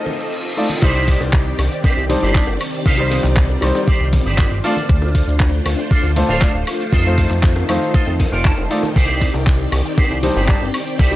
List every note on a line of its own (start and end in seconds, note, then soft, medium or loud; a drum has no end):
0.00 0.54 A3 medium
0.00 0.79 C4 medium
0.00 0.54 D#4 medium
0.00 0.54 F4 medium
0.00 0.79 F4 medium
0.00 0.79 A4 medium
0.00 0.55 C5 medium
0.00 0.81 D#5 medium
0.00 reverse cymbal medium
0.06 high bongo medium
0.06 high conga medium
0.20 shaker medium
0.33 shaker medium
0.45 high bongo soft
0.45 shaker soft
0.57 0.66 A3 medium
0.57 0.66 D#4 medium
0.57 0.67 F4 medium
0.57 0.67 D5 medium
0.69 high bongo medium
0.69 high conga medium
0.69 shaker medium
0.82 1.16 C2 loud
0.82 4.60 D#3 medium
0.82 1.59 G3 medium
0.82 4.60 C4 medium
0.82 1.21 D#4 loud
0.82 1.59 D#4 medium
0.82 2.84 G4 medium
0.82 1.21 G4 medium
0.82 1.21 C5 medium
0.82 1.60 C5 loud
0.82 4.60 D5 medium
0.82 1.59 D5 medium
0.82 1.21 D5 loud
0.82 kick loud
0.82 crash loud
0.82 shaker medium
0.95 high bongo medium
0.95 shaker soft
1.08 kick medium
1.08 open hi-hat loud
1.20 1.54 C2 medium
1.20 high bongo medium
1.20 shaker medium
1.33 kick loud
1.33 clap loud
1.33 shaker medium
1.47 shaker soft
1.59 1.68 C2 medium
1.59 muted clean electric guitar stroke soft
1.59 open hi-hat loud
1.59 high bongo medium
1.59 high woodblock medium
1.71 muted clean electric guitar stroke medium
1.71 shaker medium
1.84 1.94 C2 soft
1.84 2.03 D#4 medium
1.84 2.03 G4 medium
1.84 2.03 C5 medium
1.84 2.04 D5 medium
1.84 kick loud
1.84 high bongo medium
1.84 shaker medium
1.97 2.16 C2 medium
1.97 shaker soft
2.09 2.32 G3 medium
2.09 2.32 D4 medium
2.09 2.32 D#4 medium
2.09 2.32 C5 medium
2.09 open hi-hat loud
2.09 high conga medium
2.09 low conga medium
2.22 2.42 G1 loud
2.22 2.54 D#4 medium
2.22 2.54 G4 medium
2.22 2.54 C5 medium
2.22 2.54 D5 medium
2.22 high bongo medium
2.22 shaker medium
2.35 2.44 G3 medium
2.35 2.44 D4 medium
2.35 2.44 D#4 medium
2.35 2.45 D5 medium
2.35 kick loud
2.35 clap loud
2.35 shaker medium
2.47 2.58 G1 medium
2.47 high bongo medium
2.47 shaker soft
2.61 open hi-hat loud
2.61 high woodblock medium
2.74 shaker medium
2.86 3.19 C2 loud
2.86 3.24 D#4 loud
2.86 8.92 F4 medium
2.86 3.24 G4 loud
2.86 3.24 C5 medium
2.86 3.24 F5 loud
2.86 kick loud
2.86 high bongo soft
2.86 shaker medium
2.98 3.59 G3 medium
2.98 3.59 D#4 medium
2.98 3.60 C5 medium
2.98 3.59 D5 medium
2.98 shaker soft
3.11 open hi-hat loud
3.11 high bongo medium
3.24 3.57 C2 medium
3.24 clap soft
3.24 shaker medium
3.36 kick loud
3.36 clap loud
3.36 shaker medium
3.50 high bongo medium
3.50 shaker soft
3.61 3.72 C2 medium
3.61 4.60 G3 medium
3.61 4.61 D#4 medium
3.61 4.61 C5 medium
3.61 4.61 D5 medium
3.61 muted clean electric guitar stroke soft
3.61 open hi-hat loud
3.61 high woodblock medium
3.75 muted clean electric guitar stroke medium
3.75 high bongo medium
3.75 shaker medium
3.87 4.07 D#4 medium
3.87 4.07 G4 medium
3.87 4.07 C5 medium
3.87 4.07 D5 loud
3.87 kick loud
3.87 shaker medium
4.00 4.20 C2 medium
4.00 shaker soft
4.12 kick medium
4.12 open hi-hat loud
4.12 high bongo medium
4.12 high conga medium
4.12 low conga medium
4.26 4.45 G1 loud
4.26 4.58 D#4 medium
4.26 4.58 G4 medium
4.26 4.58 C5 medium
4.26 4.58 D5 medium
4.26 shaker medium
4.38 kick loud
4.38 clap loud
4.38 high bongo medium
4.38 high woodblock medium
4.38 shaker medium
4.51 4.61 G1 medium
4.51 shaker soft
4.64 4.73 A3 medium
4.64 8.92 A3 medium
4.64 4.73 D4 medium
4.64 6.91 D4 medium
4.64 5.45 F4 medium
4.64 4.73 F4 medium
4.64 5.45 A4 medium
4.64 5.45 C5 medium
4.64 8.92 C5 medium
4.64 5.45 D5 loud
4.64 4.74 D5 medium
4.64 open hi-hat loud
4.77 high bongo medium
4.77 high conga medium
4.77 shaker medium
4.89 5.23 D2 loud
4.89 kick loud
4.89 shaker medium
5.02 high bongo medium
5.02 shaker soft
5.15 kick medium
5.15 open hi-hat loud
5.27 5.61 D2 loud
5.27 shaker medium
5.40 kick loud
5.40 clap loud
5.40 high bongo medium
5.40 shaker medium
5.54 shaker soft
5.65 5.75 D2 medium
5.65 muted clean electric guitar stroke soft
5.65 open hi-hat loud
5.65 high bongo medium
5.65 high woodblock medium
5.78 muted clean electric guitar stroke medium
5.78 shaker medium
5.90 6.01 D2 soft
5.90 6.10 F4 medium
5.90 6.10 A4 medium
5.90 6.10 C5 medium
5.90 6.10 D5 medium
5.90 kick loud
5.90 shaker medium
6.03 6.23 D2 medium
6.03 high bongo soft
6.03 shaker soft
6.16 6.39 A3 medium
6.16 6.39 D4 medium
6.16 6.39 F4 medium
6.16 6.39 C5 medium
6.16 open hi-hat loud
6.16 high conga medium
6.16 low conga medium
6.29 6.49 D1 loud
6.29 6.61 F4 medium
6.29 6.61 A4 medium
6.29 6.61 C5 medium
6.29 6.61 F5 loud
6.29 high bongo medium
6.29 shaker medium
6.41 6.51 A3 medium
6.41 6.51 D4 medium
6.41 6.51 F4 medium
6.41 6.51 D5 medium
6.41 kick loud
6.41 clap loud
6.41 shaker medium
6.54 6.64 D1 medium
6.54 shaker soft
6.67 open hi-hat loud
6.67 high bongo soft
6.67 high woodblock medium
6.81 shaker medium
6.92 7.26 F2 loud
6.92 11.16 D#3 medium
6.92 7.31 F4 loud
6.92 7.31 A4 loud
6.92 7.31 C5 loud
6.92 7.31 D#5 loud
6.92 kick loud
6.92 high bongo medium
6.92 shaker medium
7.05 7.66 A3 medium
7.05 7.66 D#4 medium
7.05 7.66 F4 medium
7.05 7.67 C5 medium
7.05 shaker soft
7.18 kick medium
7.18 open hi-hat loud
7.30 7.64 F2 medium
7.30 clap soft
7.30 high bongo soft
7.30 shaker medium
7.43 kick loud
7.43 clap loud
7.43 shaker medium
7.56 high bongo medium
7.56 shaker soft
7.68 7.79 F2 medium
7.68 8.67 A3 medium
7.68 8.68 D#4 medium
7.68 8.68 F4 medium
7.68 8.68 C5 medium
7.68 muted clean electric guitar stroke soft
7.68 open hi-hat loud
7.68 high woodblock medium
7.81 muted clean electric guitar stroke medium
7.81 shaker medium
7.94 8.13 F4 medium
7.94 8.13 A4 medium
7.94 8.14 C5 medium
7.94 8.14 D#5 medium
7.94 kick loud
7.94 high bongo soft
7.94 shaker medium
8.07 8.26 F2 medium
8.07 shaker soft
8.20 8.32 D#5 medium
8.20 kick medium
8.20 open hi-hat loud
8.20 high bongo medium
8.20 high conga medium
8.20 low conga medium
8.32 8.52 F1 loud
8.32 8.64 F4 medium
8.32 8.64 A4 medium
8.32 8.64 C5 medium
8.32 8.64 D5 medium
8.32 8.44 F5 medium
8.32 shaker medium
8.45 8.93 A5 medium
8.45 kick loud
8.45 clap loud
8.45 high woodblock medium
8.45 shaker medium
8.58 8.68 F1 medium
8.58 high bongo medium
8.58 shaker soft
8.70 8.80 A3 medium
8.70 8.80 D#4 medium
8.70 8.80 F4 medium
8.70 8.80 D5 medium
8.70 open hi-hat loud
8.83 high bongo medium
8.83 high conga medium
8.83 shaker medium
8.95 9.29 C2 loud
8.95 11.16 C4 medium
8.95 9.34 D#4 loud
8.95 9.34 G4 medium
8.95 11.16 G4 medium
8.95 9.34 C5 medium
8.95 11.16 D5 medium
8.95 9.34 D5 loud
8.95 kick loud
8.95 shaker medium
9.09 high bongo soft
9.09 shaker soft
9.22 kick medium
9.22 open hi-hat loud
9.34 9.68 C2 loud
9.34 high bongo medium
9.34 shaker medium
9.47 kick loud
9.47 clap loud
9.47 shaker medium
9.60 shaker soft
9.72 9.82 C2 medium
9.72 muted clean electric guitar stroke soft
9.72 open hi-hat loud
9.72 high bongo medium
9.72 high woodblock medium
9.85 muted clean electric guitar stroke medium
9.85 shaker medium
9.97 10.08 C2 soft
9.97 10.17 D#4 medium
9.97 10.17 G4 medium
9.97 10.17 C5 medium
9.97 10.17 D5 medium
9.97 kick loud
9.97 high bongo medium
9.97 shaker medium
10.11 10.30 C2 medium
10.11 shaker soft
10.23 10.45 G3 medium
10.23 10.46 D4 medium
10.23 10.46 D#4 medium
10.23 10.46 C5 medium
10.23 open hi-hat loud
10.23 high conga medium
10.23 low conga medium
10.36 10.55 G1 loud
10.36 10.68 D#4 medium
10.36 10.68 G4 medium
10.36 10.68 C5 medium
10.36 10.68 D5 medium
10.36 high bongo soft
10.36 shaker medium
10.48 10.57 G3 medium
10.48 10.58 D4 medium
10.48 10.58 D#4 medium
10.48 10.58 D5 medium
10.48 kick loud
10.48 clap loud
10.48 shaker medium
10.61 10.71 G1 medium
10.61 high bongo medium
10.61 shaker soft
10.74 open hi-hat loud
10.74 high woodblock medium
10.87 shaker medium
10.99 11.16 C2 loud
10.99 11.16 D#4 loud
10.99 11.16 G4 loud
10.99 11.16 C5 medium
10.99 11.16 D5 loud
10.99 kick loud
10.99 high bongo soft
10.99 shaker medium
11.11 11.16 G3 medium
11.11 11.16 D5 medium